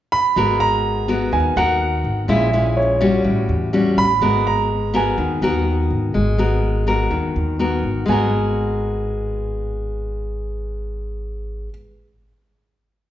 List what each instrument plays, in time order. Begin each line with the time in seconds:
0.12 grand piano B5
0.36 upright bass G#1, nylon-string guitar G#3 B3 F#4 A#4
0.60 grand piano A#5
1.08 nylon-string guitar B3 F#4 A#4
1.32 upright bass D#2, nylon-string guitar D#3, grand piano G#5
1.56 upright bass D#2, nylon-string guitar B3 F#4 A#4, grand piano F#5
2.04 upright bass G#1
2.28 upright bass A#1, nylon-string guitar A#2 G#3 C#4 E4, grand piano E5
2.53 nylon-string guitar G#3 C#4 E4
2.77 grand piano C#5
3.00 nylon-string guitar G3 C#4 F#4
3.24 upright bass A1, nylon-string guitar A2
3.49 upright bass E2
3.73 nylon-string guitar G3 C#4 F#4
3.97 upright bass A1, grand piano B5
4.21 upright bass G#1, nylon-string guitar G#3 B3 F#4 A#4
4.47 grand piano A#5
4.94 nylon-string guitar B3 F#4 A#4, grand piano G#5
5.18 upright bass D#2, nylon-string guitar D#3
5.42 upright bass D#2, nylon-string guitar B3 F#4 A#4
5.90 upright bass G#1
6.14 upright bass G#1, nylon-string guitar G#3
6.38 nylon-string guitar B3 F#4 A#4
6.87 nylon-string guitar B3 F#4 A#4
7.11 upright bass D#2, nylon-string guitar D#3
7.36 upright bass D#2
7.59 nylon-string guitar B3 F#4 A#4
7.84 upright bass G#1
8.06 upright bass G#1, nylon-string guitar G#3 B3, grand piano G#5
8.10 nylon-string guitar F#4 A#4